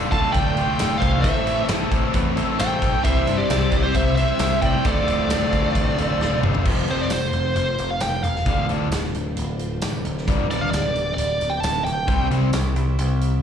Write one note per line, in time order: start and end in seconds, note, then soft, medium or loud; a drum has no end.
0.00 0.80 D2 medium
0.00 1.23 D2 medium
0.00 0.34 A2 medium
0.00 1.22 A2 medium
0.00 0.13 D3 medium
0.00 1.24 D3 medium
0.00 0.12 A3 medium
0.00 1.23 A3 medium
0.00 1.23 D4 medium
0.00 0.56 F4 loud
0.00 1.23 F4 medium
0.00 1.24 F4 medium
0.00 1.23 D5 medium
0.11 0.27 D1 medium
0.11 0.58 D3 medium
0.11 0.57 A3 medium
0.11 0.56 F4 medium
0.11 0.34 F5 medium
0.11 0.32 A5 medium
0.11 kick medium
0.11 closed hi-hat medium
0.32 0.65 D1 loud
0.32 0.97 D5 medium
0.32 1.03 G5 loud
0.32 kick medium
0.32 closed hi-hat loud
0.57 0.79 D3 medium
0.57 0.80 A3 medium
0.57 0.80 F4 medium
0.57 closed hi-hat medium
0.79 0.95 D1 medium
0.79 1.23 D2 medium
0.79 1.22 A2 loud
0.79 1.24 D3 loud
0.79 1.24 A3 loud
0.79 1.24 F4 loud
0.79 snare loud
0.79 closed hi-hat loud
0.79 tambourine loud
0.98 1.21 C5 medium
0.98 1.21 F5 medium
1.02 1.24 C2 medium
1.02 1.24 D3 medium
1.02 1.24 A3 medium
1.02 1.23 F4 medium
1.02 kick medium
1.02 closed hi-hat medium
1.21 1.39 A1 medium
1.21 1.69 A2 medium
1.21 2.58 E3 medium
1.21 3.03 A3 medium
1.21 1.47 A3 medium
1.21 1.47 C4 loud
1.21 3.03 C4 medium
1.21 3.03 E4 medium
1.21 1.65 C5 medium
1.21 3.03 C5 medium
1.21 1.65 E5 medium
1.21 kick loud
1.21 closed hi-hat loud
1.26 1.46 E4 medium
1.26 1.45 A4 medium
1.46 1.61 A1 medium
1.46 1.66 A3 medium
1.46 1.68 C4 medium
1.46 1.69 E4 medium
1.46 1.69 A4 medium
1.46 closed hi-hat medium
1.67 1.84 A1 loud
1.67 2.60 A2 loud
1.67 2.60 E3 loud
1.67 1.92 A3 medium
1.67 1.93 C4 medium
1.67 1.91 E4 medium
1.67 1.90 A4 medium
1.67 snare loud
1.67 closed hi-hat loud
1.67 tambourine loud
1.91 2.07 A1 medium
1.91 2.37 A3 medium
1.91 2.37 C4 medium
1.91 2.36 E4 medium
1.91 2.35 A4 medium
1.91 kick medium
1.91 closed hi-hat medium
2.14 2.30 E2 loud
2.14 kick medium
2.14 closed hi-hat loud
2.36 2.52 A1 medium
2.36 2.57 A3 medium
2.36 2.59 C4 medium
2.36 2.59 E4 medium
2.36 2.59 A4 medium
2.36 closed hi-hat medium
2.57 2.75 A1 loud
2.57 3.02 A2 loud
2.57 3.03 E3 loud
2.57 3.03 A3 loud
2.57 3.04 C4 loud
2.57 3.03 E4 loud
2.57 3.04 A4 loud
2.57 3.01 C5 medium
2.57 3.02 G5 loud
2.57 snare loud
2.57 closed hi-hat loud
2.57 tambourine loud
2.82 2.97 B1 medium
2.82 3.04 A3 medium
2.82 3.05 C4 medium
2.82 3.03 E4 medium
2.82 3.03 A4 medium
2.82 kick medium
2.82 closed hi-hat medium
3.03 3.20 C2 loud
3.03 3.49 C3 medium
3.03 3.49 G3 medium
3.03 4.83 G3 medium
3.03 3.28 C4 loud
3.03 4.83 C4 medium
3.03 4.83 E4 medium
3.03 3.27 E4 medium
3.03 3.26 G4 loud
3.03 4.83 C5 medium
3.03 3.36 C5 medium
3.03 3.26 C5 loud
3.03 3.36 E5 loud
3.03 kick loud
3.03 closed hi-hat loud
3.26 3.43 G2 medium
3.26 3.48 C4 medium
3.26 3.48 E4 medium
3.26 3.49 G4 medium
3.26 3.51 C5 medium
3.26 closed hi-hat medium
3.38 3.80 G4 medium
3.38 3.80 D5 loud
3.49 3.65 C2 loud
3.49 4.40 C3 medium
3.49 4.40 G3 medium
3.49 3.72 C4 medium
3.49 3.71 E4 medium
3.49 3.70 G4 medium
3.49 3.70 C5 medium
3.49 snare loud
3.49 closed hi-hat loud
3.49 tambourine loud
3.71 3.87 C2 medium
3.71 4.18 C4 medium
3.71 4.17 E4 medium
3.71 4.16 G4 medium
3.71 4.15 C5 medium
3.71 kick medium
3.71 closed hi-hat medium
3.83 3.95 G4 medium
3.83 3.94 C5 loud
3.94 4.25 C2 loud
3.94 4.17 C5 medium
3.94 4.14 E5 loud
3.94 kick loud
3.94 closed hi-hat loud
4.16 4.40 C4 medium
4.16 4.40 E4 medium
4.16 4.40 G4 medium
4.16 4.41 C5 medium
4.16 4.60 C5 medium
4.16 4.58 E5 medium
4.16 closed hi-hat medium
4.39 4.55 C2 loud
4.39 4.83 C3 loud
4.39 4.84 G3 medium
4.39 4.85 C4 medium
4.39 4.84 E4 loud
4.39 4.84 G4 loud
4.39 4.86 C5 loud
4.39 snare loud
4.39 closed hi-hat loud
4.39 tambourine loud
4.62 4.78 A2 medium
4.62 4.86 C4 medium
4.62 4.84 E4 medium
4.62 4.84 G4 medium
4.62 4.87 C5 medium
4.62 4.85 D5 medium
4.62 4.85 G5 loud
4.62 kick medium
4.62 closed hi-hat medium
4.84 5.00 D1 medium
4.84 5.30 D2 medium
4.84 5.30 A2 loud
4.84 5.09 D3 loud
4.84 6.64 A3 medium
4.84 5.08 A3 loud
4.84 5.07 C4 medium
4.84 6.64 D4 medium
4.84 6.64 F4 medium
4.84 5.05 F4 medium
4.84 6.40 A4 medium
4.84 6.64 C5 medium
4.84 6.39 D5 medium
4.84 kick loud
4.84 closed hi-hat loud
5.06 5.22 D1 medium
5.06 5.28 D3 medium
5.06 5.29 A3 medium
5.06 5.30 C4 medium
5.06 5.30 F4 medium
5.06 closed hi-hat medium
5.29 5.45 D1 loud
5.29 6.20 D2 medium
5.29 6.20 A2 loud
5.29 5.53 D3 medium
5.29 5.53 A3 medium
5.29 5.52 C4 medium
5.29 5.51 F4 medium
5.29 snare loud
5.29 closed hi-hat medium
5.29 tambourine loud
5.52 5.68 D1 medium
5.52 5.99 D3 medium
5.52 5.99 A3 medium
5.52 5.97 C4 medium
5.52 5.97 F4 medium
5.52 kick medium
5.52 closed hi-hat medium
5.75 5.90 A1 medium
5.75 kick medium
5.75 closed hi-hat loud
5.98 6.13 D1 medium
5.98 6.20 D3 medium
5.98 6.21 A3 medium
5.98 6.21 C4 medium
5.98 6.22 F4 medium
5.98 closed hi-hat medium
6.20 6.35 D1 medium
6.20 6.64 D2 medium
6.20 6.64 A2 medium
6.20 6.65 D3 medium
6.20 6.65 A3 medium
6.20 6.65 C4 loud
6.20 6.65 F4 loud
6.20 snare medium
6.31 high tom medium
6.42 6.58 G1 medium
6.42 6.65 D3 medium
6.42 6.65 A3 medium
6.42 6.65 C4 medium
6.42 6.64 F4 medium
6.42 mid tom loud
6.54 floor tom medium
6.65 7.08 F1 medium
6.65 6.83 F2 medium
6.65 6.84 C3 medium
6.65 6.84 F3 medium
6.65 8.45 A3 medium
6.65 8.45 C4 medium
6.65 8.45 F4 medium
6.65 8.45 C5 medium
6.65 kick loud
6.65 crash loud
6.88 7.06 F2 medium
6.88 7.07 C3 medium
6.88 7.07 F3 medium
6.88 7.01 C5 medium
6.88 closed hi-hat medium
7.01 7.12 D5 medium
7.10 7.32 F1 medium
7.10 7.55 C5 medium
7.10 snare loud
7.10 closed hi-hat medium
7.10 tambourine loud
7.32 7.54 F1 medium
7.32 closed hi-hat medium
7.56 7.77 F1 medium
7.56 7.88 C5 medium
7.56 closed hi-hat medium
7.78 8.00 F1 medium
7.78 closed hi-hat medium
7.91 8.01 F5 loud
8.00 8.22 F1 medium
8.00 8.22 G5 loud
8.00 snare loud
8.00 closed hi-hat medium
8.00 tambourine loud
8.23 8.45 E1 medium
8.23 8.66 F5 medium
8.23 closed hi-hat medium
8.36 snare soft
8.46 8.67 D1 medium
8.46 8.64 D2 medium
8.46 8.65 A2 medium
8.46 8.65 D3 medium
8.46 10.26 A3 medium
8.46 10.25 D4 medium
8.46 10.26 F4 medium
8.46 10.25 C5 medium
8.46 kick loud
8.46 closed hi-hat medium
8.69 8.90 D1 medium
8.69 8.87 D2 medium
8.69 8.87 A2 medium
8.69 8.88 D3 medium
8.69 closed hi-hat medium
8.91 9.12 D1 medium
8.91 snare loud
8.91 closed hi-hat medium
8.91 tambourine loud
9.04 snare soft
9.14 9.35 D1 medium
9.14 closed hi-hat medium
9.37 9.80 D1 loud
9.37 closed hi-hat medium
9.59 closed hi-hat medium
9.82 10.04 D1 medium
9.82 snare loud
9.82 closed hi-hat medium
9.82 tambourine loud
10.05 10.26 D1 medium
10.05 closed hi-hat medium
10.18 snare soft
10.26 10.70 D1 medium
10.26 10.45 G2 medium
10.26 10.46 D3 medium
10.26 10.46 G3 medium
10.26 12.06 B3 medium
10.26 12.06 D4 medium
10.26 12.06 G4 medium
10.26 12.06 D5 medium
10.26 kick loud
10.26 closed hi-hat medium
10.50 10.68 G2 medium
10.50 10.68 D3 medium
10.50 10.68 G3 medium
10.50 10.61 D5 medium
10.50 closed hi-hat medium
10.61 10.71 F5 medium
10.71 10.94 D1 medium
10.71 11.13 D5 medium
10.71 snare loud
10.71 closed hi-hat medium
10.71 tambourine loud
10.94 11.16 D1 medium
10.94 closed hi-hat medium
11.14 11.39 D1 medium
11.14 11.51 D5 medium
11.14 closed hi-hat loud
11.40 11.61 D1 medium
11.40 closed hi-hat medium
11.50 11.60 G5 loud
11.60 11.84 D1 medium
11.60 11.84 A5 loud
11.60 snare loud
11.60 closed hi-hat medium
11.60 tambourine medium
11.84 12.06 D1 medium
11.84 12.27 G5 medium
11.84 closed hi-hat medium
12.07 12.29 C2 medium
12.07 12.26 C3 medium
12.07 12.26 G3 medium
12.07 13.42 C4 medium
12.07 12.27 C4 medium
12.07 13.42 E4 medium
12.07 13.42 G4 medium
12.07 13.42 E5 medium
12.07 kick loud
12.07 closed hi-hat medium
12.30 12.52 C2 medium
12.30 12.49 C3 medium
12.30 12.50 G3 medium
12.30 12.50 C4 medium
12.30 closed hi-hat medium
12.53 12.74 C2 medium
12.53 snare loud
12.53 closed hi-hat medium
12.53 tambourine loud
12.76 12.97 C2 medium
12.76 closed hi-hat medium
12.99 13.41 C2 medium
12.99 closed hi-hat medium
13.21 closed hi-hat medium